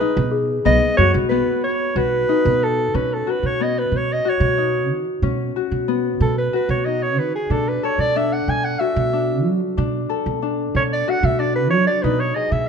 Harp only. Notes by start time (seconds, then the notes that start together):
Already playing: B3 G#4
0.01 D#4
0.65 B3
0.98 F#4
1.31 B3
1.96 F#4
2.29 D#4
2.95 C#4
3.27 F#4
3.60 B3
4.25 F#4
4.58 D#4
5.23 C#4
5.56 F#4
5.88 B3
6.53 F#4
6.86 D#4
7.51 D4
7.83 A4
8.16 D4
8.80 F#4
9.13 D4
9.77 D4
10.09 A4
10.42 D4
11.08 F#4
11.39 D4
12.04 D#4
12.36 G#4